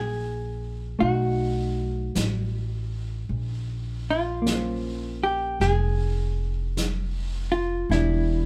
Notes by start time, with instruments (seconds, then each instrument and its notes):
Already playing: upright bass A#1, hollow-body jazz guitar A#3 D#4 F#4 G#4
0.99 upright bass B1, hollow-body jazz guitar A3 D#4 F#4, brush sweep
2.15 upright bass A1, brush sweep, snare, hi-hat pedal
3.29 upright bass A#1, brush sweep
4.10 hollow-body jazz guitar F4
4.42 hollow-body jazz guitar A#3
4.46 hollow-body jazz guitar C#4, brush sweep, snare, hi-hat pedal
4.54 hollow-body jazz guitar C5
5.24 hollow-body jazz guitar G4
5.60 upright bass F1, hollow-body jazz guitar G#4, brush sweep, snare
6.77 brush sweep, snare, hi-hat pedal
7.52 hollow-body jazz guitar F4
7.89 upright bass E1, hollow-body jazz guitar E3 B3 D4 E4, brush sweep, snare
7.95 hollow-body jazz guitar G4